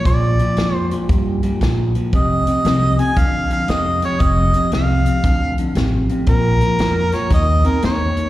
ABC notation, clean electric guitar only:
X:1
M:4/4
L:1/8
Q:"Swing" 1/4=116
K:Bb
V:1 name="Clean electric guitar" clef=bass
[B,,F,] [B,,F,] [B,,F,] [B,,F,] [B,,G,] [B,,G,] [B,,F,] [B,,F,] | [F,,C,] [F,,C,] [F,,C,] [F,,C,] [F,,D,] [F,,D,] [F,,C,] [F,,C,] | [F,,C,] [F,,C,] [F,,C,] [F,,C,] [F,,D,] [F,,D,] [F,,C,] [F,,C,] | [B,,F,] [B,,F,] [B,,F,] [B,,F,] [E,B,] [E,C] [E,B,] [E,B,] |]